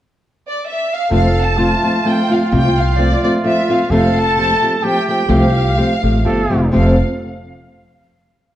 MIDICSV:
0, 0, Header, 1, 5, 480
1, 0, Start_track
1, 0, Key_signature, -1, "major"
1, 0, Tempo, 467290
1, 1133, Time_signature, 3, 2, 24, 8
1, 5452, Tempo, 475059
1, 8732, End_track
2, 0, Start_track
2, 0, Title_t, "Violin section"
2, 0, Program_c, 0, 48
2, 490, Note_on_c, 0, 74, 70
2, 665, Note_off_c, 0, 74, 0
2, 710, Note_on_c, 0, 76, 77
2, 942, Note_off_c, 0, 76, 0
2, 965, Note_on_c, 0, 77, 79
2, 1160, Note_off_c, 0, 77, 0
2, 1191, Note_on_c, 0, 77, 77
2, 1412, Note_off_c, 0, 77, 0
2, 1440, Note_on_c, 0, 81, 70
2, 2125, Note_off_c, 0, 81, 0
2, 2136, Note_on_c, 0, 79, 74
2, 2382, Note_off_c, 0, 79, 0
2, 2391, Note_on_c, 0, 77, 64
2, 2596, Note_off_c, 0, 77, 0
2, 2606, Note_on_c, 0, 79, 77
2, 2837, Note_off_c, 0, 79, 0
2, 2865, Note_on_c, 0, 77, 65
2, 3068, Note_on_c, 0, 74, 76
2, 3072, Note_off_c, 0, 77, 0
2, 3311, Note_off_c, 0, 74, 0
2, 3324, Note_on_c, 0, 74, 72
2, 3421, Note_off_c, 0, 74, 0
2, 3554, Note_on_c, 0, 76, 82
2, 3789, Note_off_c, 0, 76, 0
2, 3806, Note_on_c, 0, 77, 67
2, 4016, Note_off_c, 0, 77, 0
2, 4028, Note_on_c, 0, 77, 77
2, 4263, Note_off_c, 0, 77, 0
2, 4284, Note_on_c, 0, 81, 95
2, 4893, Note_off_c, 0, 81, 0
2, 4906, Note_on_c, 0, 81, 46
2, 4955, Note_on_c, 0, 79, 90
2, 4965, Note_off_c, 0, 81, 0
2, 5223, Note_off_c, 0, 79, 0
2, 5236, Note_on_c, 0, 79, 70
2, 5438, Note_off_c, 0, 79, 0
2, 5454, Note_on_c, 0, 77, 81
2, 6679, Note_off_c, 0, 77, 0
2, 6896, Note_on_c, 0, 77, 52
2, 7142, Note_off_c, 0, 77, 0
2, 8732, End_track
3, 0, Start_track
3, 0, Title_t, "Trumpet"
3, 0, Program_c, 1, 56
3, 1139, Note_on_c, 1, 69, 86
3, 1619, Note_on_c, 1, 65, 75
3, 1635, Note_off_c, 1, 69, 0
3, 4008, Note_on_c, 1, 69, 103
3, 4024, Note_off_c, 1, 65, 0
3, 4962, Note_on_c, 1, 67, 76
3, 4977, Note_off_c, 1, 69, 0
3, 6154, Note_off_c, 1, 67, 0
3, 6402, Note_on_c, 1, 69, 82
3, 6860, Note_off_c, 1, 69, 0
3, 6925, Note_on_c, 1, 69, 60
3, 7158, Note_off_c, 1, 69, 0
3, 8732, End_track
4, 0, Start_track
4, 0, Title_t, "Nylon-string guitar"
4, 0, Program_c, 2, 24
4, 1131, Note_on_c, 2, 41, 55
4, 1134, Note_on_c, 2, 48, 46
4, 1135, Note_on_c, 2, 57, 55
4, 1136, Note_on_c, 2, 53, 55
4, 1145, Note_on_c, 2, 65, 60
4, 1146, Note_on_c, 2, 60, 54
4, 1292, Note_off_c, 2, 41, 0
4, 1293, Note_off_c, 2, 48, 0
4, 1294, Note_off_c, 2, 57, 0
4, 1295, Note_off_c, 2, 53, 0
4, 1299, Note_off_c, 2, 60, 0
4, 1299, Note_off_c, 2, 65, 0
4, 1610, Note_on_c, 2, 53, 43
4, 1618, Note_on_c, 2, 57, 55
4, 1626, Note_on_c, 2, 60, 55
4, 1628, Note_on_c, 2, 65, 56
4, 1774, Note_off_c, 2, 53, 0
4, 1778, Note_off_c, 2, 57, 0
4, 1782, Note_off_c, 2, 60, 0
4, 1783, Note_off_c, 2, 65, 0
4, 1878, Note_on_c, 2, 53, 33
4, 1884, Note_on_c, 2, 60, 38
4, 1886, Note_on_c, 2, 57, 41
4, 1888, Note_on_c, 2, 65, 44
4, 2013, Note_off_c, 2, 53, 0
4, 2016, Note_off_c, 2, 60, 0
4, 2017, Note_off_c, 2, 57, 0
4, 2018, Note_off_c, 2, 65, 0
4, 2103, Note_on_c, 2, 53, 47
4, 2110, Note_on_c, 2, 57, 51
4, 2115, Note_on_c, 2, 60, 50
4, 2123, Note_on_c, 2, 65, 51
4, 2260, Note_off_c, 2, 53, 0
4, 2264, Note_off_c, 2, 57, 0
4, 2267, Note_off_c, 2, 60, 0
4, 2270, Note_off_c, 2, 65, 0
4, 2352, Note_on_c, 2, 53, 46
4, 2358, Note_on_c, 2, 57, 46
4, 2365, Note_on_c, 2, 60, 38
4, 2369, Note_on_c, 2, 65, 50
4, 2490, Note_off_c, 2, 53, 0
4, 2493, Note_off_c, 2, 57, 0
4, 2496, Note_off_c, 2, 60, 0
4, 2498, Note_off_c, 2, 65, 0
4, 2579, Note_on_c, 2, 41, 62
4, 2587, Note_on_c, 2, 53, 63
4, 2588, Note_on_c, 2, 48, 72
4, 2595, Note_on_c, 2, 65, 62
4, 2596, Note_on_c, 2, 60, 74
4, 2598, Note_on_c, 2, 57, 52
4, 2737, Note_off_c, 2, 41, 0
4, 2741, Note_off_c, 2, 53, 0
4, 2742, Note_off_c, 2, 48, 0
4, 2745, Note_off_c, 2, 65, 0
4, 2746, Note_off_c, 2, 60, 0
4, 2747, Note_off_c, 2, 57, 0
4, 3054, Note_on_c, 2, 53, 53
4, 3061, Note_on_c, 2, 57, 50
4, 3069, Note_on_c, 2, 60, 58
4, 3074, Note_on_c, 2, 65, 64
4, 3213, Note_off_c, 2, 53, 0
4, 3217, Note_off_c, 2, 57, 0
4, 3220, Note_off_c, 2, 60, 0
4, 3223, Note_off_c, 2, 65, 0
4, 3313, Note_on_c, 2, 53, 37
4, 3324, Note_on_c, 2, 57, 47
4, 3331, Note_on_c, 2, 60, 47
4, 3332, Note_on_c, 2, 65, 51
4, 3448, Note_off_c, 2, 53, 0
4, 3453, Note_off_c, 2, 57, 0
4, 3457, Note_off_c, 2, 60, 0
4, 3457, Note_off_c, 2, 65, 0
4, 3531, Note_on_c, 2, 53, 52
4, 3533, Note_on_c, 2, 57, 58
4, 3540, Note_on_c, 2, 60, 49
4, 3542, Note_on_c, 2, 65, 59
4, 3691, Note_off_c, 2, 53, 0
4, 3693, Note_off_c, 2, 57, 0
4, 3696, Note_off_c, 2, 60, 0
4, 3697, Note_off_c, 2, 65, 0
4, 3790, Note_on_c, 2, 53, 46
4, 3790, Note_on_c, 2, 57, 55
4, 3798, Note_on_c, 2, 60, 46
4, 3799, Note_on_c, 2, 65, 55
4, 3925, Note_off_c, 2, 53, 0
4, 3925, Note_off_c, 2, 57, 0
4, 3929, Note_off_c, 2, 60, 0
4, 3929, Note_off_c, 2, 65, 0
4, 4022, Note_on_c, 2, 53, 81
4, 4023, Note_on_c, 2, 41, 72
4, 4024, Note_on_c, 2, 57, 80
4, 4027, Note_on_c, 2, 48, 69
4, 4030, Note_on_c, 2, 67, 73
4, 4032, Note_on_c, 2, 60, 71
4, 4174, Note_off_c, 2, 41, 0
4, 4174, Note_off_c, 2, 53, 0
4, 4175, Note_off_c, 2, 57, 0
4, 4176, Note_off_c, 2, 48, 0
4, 4178, Note_off_c, 2, 67, 0
4, 4179, Note_off_c, 2, 60, 0
4, 4484, Note_on_c, 2, 53, 54
4, 4494, Note_on_c, 2, 57, 59
4, 4501, Note_on_c, 2, 60, 53
4, 4506, Note_on_c, 2, 67, 60
4, 4644, Note_off_c, 2, 53, 0
4, 4649, Note_off_c, 2, 57, 0
4, 4652, Note_off_c, 2, 60, 0
4, 4655, Note_off_c, 2, 67, 0
4, 4745, Note_on_c, 2, 53, 38
4, 4745, Note_on_c, 2, 57, 38
4, 4757, Note_on_c, 2, 60, 40
4, 4762, Note_on_c, 2, 67, 49
4, 4879, Note_off_c, 2, 53, 0
4, 4879, Note_off_c, 2, 57, 0
4, 4885, Note_off_c, 2, 60, 0
4, 4888, Note_off_c, 2, 67, 0
4, 4961, Note_on_c, 2, 53, 53
4, 4965, Note_on_c, 2, 57, 52
4, 4976, Note_on_c, 2, 60, 51
4, 4980, Note_on_c, 2, 67, 52
4, 5122, Note_off_c, 2, 53, 0
4, 5124, Note_off_c, 2, 57, 0
4, 5129, Note_off_c, 2, 60, 0
4, 5131, Note_off_c, 2, 67, 0
4, 5224, Note_on_c, 2, 53, 45
4, 5226, Note_on_c, 2, 57, 55
4, 5240, Note_on_c, 2, 60, 44
4, 5241, Note_on_c, 2, 67, 48
4, 5359, Note_off_c, 2, 53, 0
4, 5360, Note_off_c, 2, 57, 0
4, 5367, Note_off_c, 2, 60, 0
4, 5368, Note_off_c, 2, 67, 0
4, 5427, Note_on_c, 2, 53, 57
4, 5428, Note_on_c, 2, 41, 66
4, 5435, Note_on_c, 2, 48, 51
4, 5435, Note_on_c, 2, 57, 67
4, 5437, Note_on_c, 2, 60, 61
4, 5440, Note_on_c, 2, 67, 73
4, 5595, Note_off_c, 2, 41, 0
4, 5595, Note_off_c, 2, 53, 0
4, 5598, Note_off_c, 2, 48, 0
4, 5598, Note_off_c, 2, 57, 0
4, 5599, Note_off_c, 2, 60, 0
4, 5601, Note_off_c, 2, 67, 0
4, 5917, Note_on_c, 2, 53, 46
4, 5923, Note_on_c, 2, 57, 56
4, 5928, Note_on_c, 2, 60, 64
4, 5934, Note_on_c, 2, 67, 56
4, 6080, Note_off_c, 2, 53, 0
4, 6083, Note_off_c, 2, 57, 0
4, 6085, Note_off_c, 2, 60, 0
4, 6088, Note_off_c, 2, 67, 0
4, 6177, Note_on_c, 2, 53, 44
4, 6186, Note_on_c, 2, 57, 44
4, 6189, Note_on_c, 2, 67, 47
4, 6191, Note_on_c, 2, 60, 46
4, 6317, Note_off_c, 2, 53, 0
4, 6321, Note_off_c, 2, 57, 0
4, 6323, Note_off_c, 2, 67, 0
4, 6324, Note_off_c, 2, 60, 0
4, 6400, Note_on_c, 2, 53, 54
4, 6400, Note_on_c, 2, 57, 59
4, 6401, Note_on_c, 2, 60, 53
4, 6411, Note_on_c, 2, 67, 55
4, 6565, Note_off_c, 2, 53, 0
4, 6565, Note_off_c, 2, 57, 0
4, 6566, Note_off_c, 2, 60, 0
4, 6571, Note_off_c, 2, 67, 0
4, 6652, Note_on_c, 2, 53, 49
4, 6661, Note_on_c, 2, 57, 51
4, 6661, Note_on_c, 2, 60, 46
4, 6666, Note_on_c, 2, 67, 58
4, 6798, Note_off_c, 2, 53, 0
4, 6802, Note_off_c, 2, 60, 0
4, 6803, Note_off_c, 2, 57, 0
4, 6805, Note_off_c, 2, 67, 0
4, 6871, Note_on_c, 2, 41, 59
4, 6875, Note_on_c, 2, 48, 64
4, 6881, Note_on_c, 2, 53, 73
4, 6887, Note_on_c, 2, 57, 72
4, 6891, Note_on_c, 2, 67, 65
4, 6897, Note_on_c, 2, 60, 66
4, 7096, Note_off_c, 2, 41, 0
4, 7098, Note_off_c, 2, 48, 0
4, 7101, Note_off_c, 2, 53, 0
4, 7104, Note_off_c, 2, 57, 0
4, 7106, Note_off_c, 2, 67, 0
4, 7109, Note_off_c, 2, 60, 0
4, 8732, End_track
5, 0, Start_track
5, 0, Title_t, "Upright bass"
5, 0, Program_c, 3, 32
5, 1141, Note_on_c, 3, 29, 68
5, 1770, Note_off_c, 3, 29, 0
5, 2590, Note_on_c, 3, 36, 87
5, 3209, Note_off_c, 3, 36, 0
5, 4005, Note_on_c, 3, 29, 81
5, 4629, Note_off_c, 3, 29, 0
5, 5435, Note_on_c, 3, 36, 91
5, 5921, Note_off_c, 3, 36, 0
5, 6182, Note_on_c, 3, 33, 77
5, 6385, Note_off_c, 3, 33, 0
5, 6414, Note_on_c, 3, 31, 70
5, 6652, Note_off_c, 3, 31, 0
5, 6681, Note_on_c, 3, 29, 67
5, 6880, Note_off_c, 3, 29, 0
5, 6914, Note_on_c, 3, 29, 72
5, 7152, Note_off_c, 3, 29, 0
5, 8732, End_track
0, 0, End_of_file